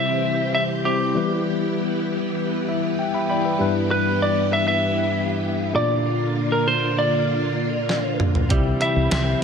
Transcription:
Already playing: C3 E3 G3 C4 E4 G4 C5 E5
0.55 E5
0.84 G3 C4 E4 G4 C5
1.14 E3 G3 B3 E4 B4
2.68 E5
2.99 G5
3.14 E5 B5
3.29 D5 G5 B5
3.45 B4 E5
3.59 G2 G3 D4 E4 G4 B4
3.91 B4
4.22 D5
4.53 E5
4.68 E5
5.73 A#2 D3 A#3 D4 F4 D5
6.52 A#4
6.67 C5
6.99 D5
7.89 snare
8.20 mid tom
8.35 floor tom
8.49 C2 C3 E3 G3 C4 E4 G4 E5, kick, closed hi-hat
8.81 E4 E5, closed hi-hat
8.96 C2
9.11 C2 C4 E5, snare, closed hi-hat, tambourine

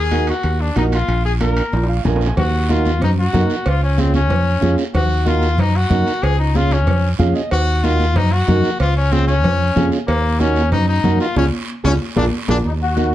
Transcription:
Already playing: D#2 G#4
0.11 D#4 F#4 A#4, high conga, high timbale, short guiro
0.27 F#4, high timbale, short guiro
0.43 D#2, high conga, high timbale, long guiro
0.61 D4
0.76 A#1 D#4 F#4 A#4, high conga, high timbale, short guiro
0.92 F4, high timbale, short guiro
1.08 A#1, high conga, high timbale, long guiro
1.25 G#4
1.40 D4 F4 A#4, high conga, high timbale, short guiro
1.57 high timbale, short guiro
1.73 A#1, high conga, high timbale, long guiro
1.83 high timbale
1.89 F5
2.05 A#1 D4 F4 A#4 G#5, high conga, low conga, low timbale, short guiro
2.16 low timbale
2.21 short guiro
2.26 low timbale
2.37 D#2 F#4, cowbell, low conga, long guiro
2.69 D#4 F4 F#4 A#4, high conga, short guiro
2.85 high conga, short guiro
3.02 F#2 D#4, cowbell, low conga, long guiro
3.19 F#4
3.33 F#2 D#4 F#4 A#4, high conga, low conga, low timbale, short guiro
3.50 short guiro
3.66 C#2 F4, cowbell, long guiro
3.83 C#4
3.97 C4 C#4 F4 G#4, high conga, short guiro
4.14 C#4, high conga, short guiro
4.30 F2, cowbell, low conga, long guiro
4.61 F2 C#4 F4 G#4, high conga, short guiro
4.78 short guiro
4.94 D#2 F#4, cowbell, low conga, long guiro
5.25 D#4 F4 F#4 A#4, high conga, short guiro
5.42 short guiro
5.58 F#2 D#4, cowbell, low conga, long guiro
5.76 F#4
5.90 F#2 D#4 F#4 A#4, high conga, low conga, short guiro
6.07 short guiro
6.23 C#2 G#4, cowbell, long guiro
6.39 D#4
6.55 C#4 F4 G#4, high conga, short guiro
6.71 C#4, high conga, short guiro
6.87 F2, cowbell, low conga, long guiro
7.19 F2 C#4 F4 G#4 F5, high conga, low conga, short guiro
7.35 D#5, short guiro
7.51 D#2 F#4, cowbell, long guiro
7.84 D#4 F4 F#4 A#4, high conga, short guiro
8.00 high conga, short guiro
8.16 F#2 D#4, cowbell, low conga, long guiro
8.32 F#4
8.48 F#2 D#4 F#4 A#4, high conga, low conga, short guiro
8.64 short guiro
8.80 C#2 F4, cowbell, long guiro
8.97 C#4
9.11 C4 C#4 F4 G#4, high conga, short guiro
9.27 C#4, high conga, short guiro
9.44 F2, cowbell, low conga, long guiro
9.76 F2 C#4 F4 G#4, high conga, low conga, short guiro
9.92 short guiro
10.07 D#2 A#3, cowbell, long guiro
10.40 C#4 D#4 F#4 A#4, high conga, short guiro
10.56 short guiro
10.72 F#2 D#4, cowbell, low conga, long guiro
10.88 D#4
11.04 F#2 D#4 F#4 A#4, high conga, low conga, short guiro
11.20 F4, short guiro
11.36 C#2 C#4 F4 G#4, high conga, high timbale, long guiro
11.84 C#2 C#4 F4 G#4, high conga, high timbale, long guiro
12.16 A#1 D4 F4 G#4 A#4, high conga, high timbale, long guiro
12.48 A#1 D4 F4 G#4 A#4, high conga, high timbale, long guiro
12.65 D#2 D#4, high conga, long guiro
12.82 F#4
12.96 D#4 F#4 A#4, high conga, short guiro

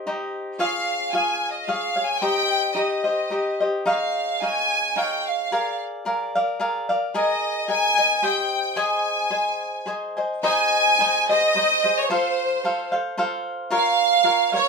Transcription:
0.07 D#4 G4 C5 D#5
0.59 F4 G#4 C#5 F5
1.12 F4 G#4 C#5 F5 G#5
1.51 D#5
1.65 F4 G#4 C#5 F5
1.96 G#4 C#5 F5
2.06 G#5
2.19 D#4 G4 C5 D#5 G5
2.74 D#4 G4 C5 D#5
3.04 G4 C5 D#5
3.30 D#4 G4 C5 D#5
3.60 G4 C5 D#5
3.86 D#4 G#4 C#5 F5
4.42 D#4 G#4 C#5 F5 G#5
4.96 D#4 G#4 C#5 F5 G5
5.27 F5
5.52 G#4 A#4 D5 F5
6.05 G#4 A#4 D5 F5
6.35 A#4 D5 F5
6.60 G#4 A#4 D5 F5
6.89 A#4 D5 F5
7.14 G#4 A#4 D#5 G#5
7.68 G#4 A#4 D#5 G#5
7.98 A#4 D#5 G#5
8.22 G4 C5 D#5 G5
8.27 G5
8.76 G#4 C5 D#5 G#5
8.81 G#5
9.31 G#4 C5 D#5 G#5
9.86 G#4 C5 D#5 G#5
10.17 C5 D#5 G#5
10.43 D#4 G#4 C5 D#5 G#5
10.99 D#4 G#4 C5 D#5
11.29 G#4 C5 D#5
11.54 D#4 G#4 C5 D#5
11.84 G#4 C5 D#5
11.99 C#5
12.10 F4 A4 C5 F5
12.64 F4 A4 C5 F5
12.92 A4 C5 F5
13.17 F4 A4 C5 F5
13.70 F4 A#4 C#5 F5
13.75 F5
14.24 F4 A#4 C#5 F5
14.52 A#4 C#5 F5

